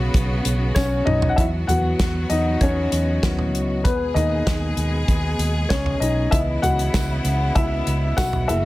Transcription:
Already playing: string section C#3 B3 F#4, upright piano F#3 B3 C#4 B4
0.14 fingered electric bass B1, kick, hi-hat pedal, open hi-hat
0.45 fingered electric bass B1, hi-hat pedal, open hi-hat
0.75 fingered electric bass B1, upright piano C#4 C#5, kick, snare, tambourine
1.05 fingered electric bass B1, upright piano D#4 D#5, mid tom
1.22 floor tom
1.29 upright piano F#5
1.36 fingered electric bass E2, string section F#3 B3 F#4, upright piano E4 E5, kick, closed hi-hat
1.67 fingered electric bass E2, upright piano E3 F#3 B3 F#4 F#5, closed hi-hat, floor tom
1.99 fingered electric bass E2, kick, snare, closed hi-hat
2.30 fingered electric bass E2, upright piano D#4 D#5, closed hi-hat
2.61 fingered electric bass E2, upright piano C#4 C#5, kick, closed hi-hat
2.92 fingered electric bass E2, closed hi-hat
3.23 fingered electric bass D#2, upright piano F#3 B3 E4, kick, snare, closed hi-hat
3.39 floor tom
3.53 fingered electric bass C#2, closed hi-hat
3.84 fingered electric bass D#2, string section B2 G#3 G#4, upright piano B3 B4, kick, closed hi-hat
4.14 fingered electric bass D#2, upright piano G#3 A#3 B3 D#4 D#5, closed hi-hat, floor tom
4.47 fingered electric bass D#2, kick, snare, closed hi-hat
4.77 fingered electric bass D#2, closed hi-hat
5.08 fingered electric bass D#2, kick, closed hi-hat
5.38 fingered electric bass D#2, closed hi-hat
5.69 upright piano C#4 C#5, kick, snare, closed hi-hat
5.86 floor tom
6.00 fingered electric bass B1, upright piano D#4 D#5, closed hi-hat
6.31 fingered electric bass C#2, string section C#3 B3 E4, upright piano E3 B3 E4 D#5 E5, kick, closed hi-hat
6.62 fingered electric bass C#2, upright piano F#4 F#5, closed hi-hat, floor tom
6.79 closed hi-hat
6.94 fingered electric bass C#2, kick, snare, closed hi-hat, tambourine
7.25 fingered electric bass C#2, closed hi-hat
7.55 fingered electric bass C#2, upright piano E4 E5, kick, closed hi-hat
7.87 fingered electric bass C#2, closed hi-hat
8.17 fingered electric bass B1, upright piano F#4 F#5, kick, snare, closed hi-hat, tambourine
8.33 floor tom
8.48 fingered electric bass F#1, string section E3 F#4 A#4, upright piano G#3 A#3 E4 E5, closed hi-hat

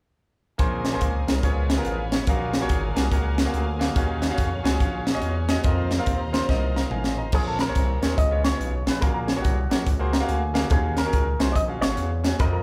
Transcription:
0.58 fm bass A#1, grand piano A#2 A#3 C#4 G#4 C5, tonewheel organ C#3 A#3 C4 G#4, string section G#4 A#4 C5 G#5, kick, closed hi-hat
0.85 snare, closed hi-hat
0.93 grand piano A#3 C#4 G#4 C5
1.01 fm bass C#2, grand piano F5, kick, closed hi-hat
1.27 fm bass C2, grand piano A#4, snare, closed hi-hat
1.42 fm bass C#2, grand piano C#3 B3 F4 G#4 C#5, tonewheel organ F3 B3 C#4, string section B4 F5 G#5, kick, closed hi-hat
1.70 snare, closed hi-hat
1.76 grand piano B3 F4 G#4 A#4
1.85 fm bass A1, grand piano F5, closed hi-hat
2.12 grand piano C#5, snare, closed hi-hat
2.27 fm bass A#1, grand piano A#2 A#3 F#4 G#4 F5, tonewheel organ F#3 A#3 F4 G#4, string section A#4, kick, closed hi-hat
2.54 snare, closed hi-hat
2.60 grand piano A#3 F#4 G#4 C#5
2.69 fm bass G#1, kick, closed hi-hat
2.94 fm bass C2, grand piano A#3 F#4 G#4 G#5, snare, closed hi-hat
3.10 fm bass C#2, grand piano A#3 F#4 G#4 F#5, kick, closed hi-hat
3.38 snare, closed hi-hat
3.45 grand piano A#3 F#4 G#4 F5
3.54 fm bass D2, closed hi-hat
3.79 grand piano A#3 F#4 G#4 F5, snare, closed hi-hat
3.95 fm bass D#2, grand piano D#3 C#4 F#4 G#4 F5, tonewheel organ C#4, string section C#5, kick, closed hi-hat
4.22 snare, closed hi-hat
4.30 grand piano C#4 F#4 G#4 F5
4.38 fm bass F2, kick, closed hi-hat
4.64 fm bass C#2, grand piano C#4 F#4 G#4 G#5, snare, closed hi-hat
4.79 fm bass A#1, grand piano C#4 F#4 G#4 F5, kick, closed hi-hat
5.07 snare, closed hi-hat
5.14 grand piano C#4 F#4 G#4 D#5
5.22 fm bass E2, closed hi-hat
5.49 grand piano C#4 F#4 G#4 D#5, snare, closed hi-hat
5.63 fm bass F2, tonewheel organ D#3 A#3 C4 F4, grand piano C4 F4 A#4 D#5, string section C5 D#5 A#5, kick, closed hi-hat
5.91 snare, closed hi-hat
5.99 grand piano C4 F4 A#4 F5
6.06 fm bass D#2, kick, closed hi-hat
6.33 grand piano C4 F4 A#4 C5, snare, closed hi-hat
6.48 fm bass C2, grand piano C4 F4 A#4 D#5, kick, snare
6.76 grand piano F5 A#5, snare
6.91 fm bass A1, grand piano F5 G#5, mid tom
7.04 snare
7.18 grand piano D#5 A#5
7.32 fm bass A#1, grand piano A#2 C4 G#4 A#4 C#5, clean electric guitar G#4, kick, crash
7.48 clean electric guitar A4
7.59 clean electric guitar A#4, snare, closed hi-hat
7.67 grand piano C4 G#4 A#4 C#5
7.75 fm bass C2, kick, closed hi-hat
8.02 fm bass D#2, grand piano C4 G#4 A#4 C#5, snare, closed hi-hat
8.18 fm bass C#2, grand piano C#3, clean electric guitar D#5, kick, closed hi-hat
8.31 grand piano B3 F4 G#4 C#5
8.44 clean electric guitar C#5, snare, closed hi-hat
8.51 grand piano B3 F4 G#4 C#5
8.60 fm bass B1, closed hi-hat
8.86 fm bass A#1, grand piano B3 F4 G#4 B4, snare, closed hi-hat
9.01 fm bass A#1, grand piano A#2 A#3 F#4 G#4 F5, clean electric guitar A#4, kick, closed hi-hat
9.14 clean electric guitar A#4
9.27 clean electric guitar G#4, snare, closed hi-hat
9.35 grand piano A#3 F#4 G#4 C#5
9.42 fm bass C2, clean electric guitar F#4, kick, closed hi-hat
9.70 fm bass A#1, grand piano A#3 F#4 G#4 C#5, snare, closed hi-hat
9.86 fm bass C#2, kick, closed hi-hat
9.99 grand piano A#3 F#4 G#4 C5
10.13 grand piano A#5, snare, closed hi-hat
10.20 grand piano A#3 F#4 G#4 F5
10.29 fm bass D2, grand piano G#5, closed hi-hat
10.54 grand piano A#3 F#4 G#4 F5, snare, closed hi-hat
10.69 fm bass D#2, grand piano D#3 C#4 F#4 G#4 F5, clean electric guitar G#4, kick, closed hi-hat
10.97 clean electric guitar A#4, snare, closed hi-hat
11.05 grand piano C#4 F#4 G#4 A#4
11.13 fm bass C#2, kick, closed hi-hat
11.39 fm bass C2, grand piano C#4 F#4 G#4 C5, snare, closed hi-hat
11.52 fm bass A#1, clean electric guitar D5 D#5, kick, closed hi-hat
11.68 grand piano C#4 F#4 G#4 F5
11.81 fm bass G#1, clean electric guitar C#5, snare, closed hi-hat
11.89 grand piano C#4 F#4 G#4 F5
11.97 fm bass E2, closed hi-hat
12.24 grand piano C#4 F#4 G#4 G#5, snare, closed hi-hat
12.39 fm bass F2, grand piano C4 F4 A#4 D#5, clean electric guitar A#4, kick, closed hi-hat
12.53 clean electric guitar A#4

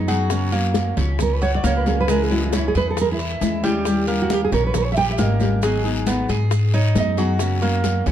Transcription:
Already playing: upright bass F#2
0.08 nylon-string guitar F#3 B3 D#4 G#4, cuban tres F#4, high bongo, short guiro, maracas
0.30 nylon-string guitar C#3 F#3 A#3 C#4 F#4, high bongo, high conga, long guiro, maracas
0.52 nylon-string guitar F#3 A#3 C#4 F#4, cuban tres A#3, high bongo, high conga, maracas
0.74 nylon-string guitar F#3 A#3 C#4 F#4, high bongo, high conga, short guiro, maracas
0.97 upright bass C#2, cuban tres C#4, high bongo, low conga, short guiro, maracas
1.19 nylon-string guitar A#4, muted nylon-string guitar stroke, high bongo, high conga, low conga, long guiro, maracas
1.34 nylon-string guitar B4
1.42 cuban tres F#4, nylon-string guitar C#5, high conga, maracas
1.55 nylon-string guitar D5
1.63 upright bass C#2, nylon-string guitar F#3 A#3 C#4 F#4 C#5, cuban tres A#3, high bongo, low bongo, high conga, short guiro, maracas
1.77 nylon-string guitar B4
1.86 nylon-string guitar F#3 A#3 C#4 F#4 G#4, high bongo, high conga, short guiro, maracas
2.01 nylon-string guitar B4
2.08 nylon-string guitar C#3 E3 G#3 C#4 E4 A#4, cuban tres G#3, high bongo, high conga, long guiro, maracas
2.23 nylon-string guitar G#4
2.30 nylon-string guitar E3 G#3 C#4 E4 F#4, high bongo, high conga, maracas
2.45 nylon-string guitar F4
2.52 nylon-string guitar E3 G#3 C#4 E4, cuban tres C#4, high bongo, high conga, short guiro, maracas
2.57 nylon-string guitar E4
2.68 nylon-string guitar G#4
2.75 upright bass E2, cuban tres G#4, nylon-string guitar B4, high bongo, high conga, short guiro, maracas
2.90 nylon-string guitar A4
2.97 muted nylon-string guitar stroke, high bongo, high conga, long guiro, maracas
3.01 nylon-string guitar A#4
3.12 nylon-string guitar E4
3.19 cuban tres E4, high conga, maracas
3.40 upright bass D#2, nylon-string guitar E3 G#3 C#4 E4, high bongo, low bongo, high conga, short guiro, maracas
3.63 nylon-string guitar E3 G#3 C#4 E4, cuban tres G3, high bongo, high conga, short guiro, maracas
3.85 nylon-string guitar D#3 G3 C#4 G4, high bongo, high conga, long guiro, maracas
4.08 nylon-string guitar G3 C#4 G4, cuban tres A#3, high bongo, high conga, maracas
4.22 nylon-string guitar F#4
4.30 nylon-string guitar D#3 G3 C#4 G4, high bongo, high conga, short guiro, maracas
4.44 nylon-string guitar G#4
4.52 upright bass A#1, cuban tres C#4, nylon-string guitar A#4, high bongo, low conga, short guiro, maracas
4.67 nylon-string guitar B4
4.74 nylon-string guitar A#4, muted nylon-string guitar stroke, high bongo, high conga, low conga, long guiro, maracas
4.84 nylon-string guitar C#5
4.92 nylon-string guitar E5, maracas
4.96 cuban tres G4, nylon-string guitar G5, high conga
5.11 nylon-string guitar E5
5.18 upright bass G#1, nylon-string guitar D#3 G3 C#4 G4 D#5, cuban tres A#3, high bongo, low bongo, high conga, short guiro, maracas
5.40 nylon-string guitar G3 C#4 G4, high bongo, high conga, short guiro, maracas
5.62 nylon-string guitar D#3 F#3 B3 D#4 G#4, cuban tres G#3, high bongo, long guiro, maracas
5.84 nylon-string guitar F#3 B3 D#4 G#4, high bongo, high conga, maracas
6.07 nylon-string guitar F#3 B3 D#4 G#4, cuban tres B3, high bongo, high conga, short guiro, maracas
6.29 upright bass G#2, cuban tres G#4, high bongo, high conga, short guiro, maracas
6.51 muted nylon-string guitar stroke, high bongo, high conga, long guiro, maracas
6.74 cuban tres D#4, nylon-string guitar C#5, high conga, maracas
6.95 upright bass F#2, nylon-string guitar F#3 B3 D#4 G#4 D#5, high bongo, low bongo, high conga, short guiro, maracas
7.17 nylon-string guitar F#3 B3 D#4 G#4, cuban tres F#4, high bongo, short guiro, maracas
7.39 nylon-string guitar C#3 F#3 A#3 C#4 F#4, high bongo, high conga, long guiro, maracas
7.62 nylon-string guitar F#3 A#3 C#4 F#4, cuban tres A#3, high bongo, high conga, maracas
7.83 nylon-string guitar F#3 A#3 C#4 F#4, high bongo, high conga, short guiro, maracas
8.06 upright bass C#2, cuban tres C#4, high bongo, low conga, short guiro, maracas

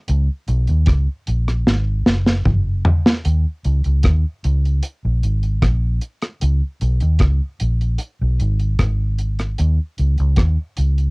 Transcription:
0.08 fingered electric bass C#2, closed hi-hat
0.48 fingered electric bass B1, closed hi-hat
0.67 fingered electric bass D#2, closed hi-hat
0.86 fingered electric bass C#2, kick, cross-stick, closed hi-hat
1.27 fingered electric bass A#1, closed hi-hat
1.48 cross-stick, closed hi-hat
1.67 fingered electric bass G#1, snare
2.06 fingered electric bass F#1, snare
2.27 snare
2.45 fingered electric bass F#1, kick, mid tom
2.85 floor tom
3.06 snare
3.25 fingered electric bass D#2, closed hi-hat
3.64 fingered electric bass C#2, closed hi-hat
3.84 fingered electric bass C#2, closed hi-hat
4.03 fingered electric bass D#2, kick, cross-stick, closed hi-hat
4.44 fingered electric bass C#2, closed hi-hat
4.65 closed hi-hat
4.82 closed hi-hat
5.05 fingered electric bass A#1
5.23 fingered electric bass G#1, closed hi-hat
5.43 closed hi-hat
5.63 fingered electric bass A#1, kick, cross-stick, closed hi-hat
6.02 closed hi-hat
6.22 cross-stick, closed hi-hat
6.42 fingered electric bass C#2, closed hi-hat
6.81 fingered electric bass B1, closed hi-hat
7.01 fingered electric bass D#2, closed hi-hat
7.19 fingered electric bass C#2, kick, cross-stick, closed hi-hat
7.60 fingered electric bass A#1, closed hi-hat
7.81 closed hi-hat
7.98 closed hi-hat
8.21 fingered electric bass B1
8.40 fingered electric bass G#1, closed hi-hat
8.59 closed hi-hat
8.79 fingered electric bass G#1, kick, cross-stick, closed hi-hat
9.18 closed hi-hat
9.39 cross-stick, closed hi-hat
9.58 fingered electric bass D#2, closed hi-hat
9.98 fingered electric bass C#2, closed hi-hat
10.18 fingered electric bass C#2, closed hi-hat
10.36 fingered electric bass D#2, kick, cross-stick, closed hi-hat
10.77 fingered electric bass C#2, closed hi-hat
10.98 closed hi-hat

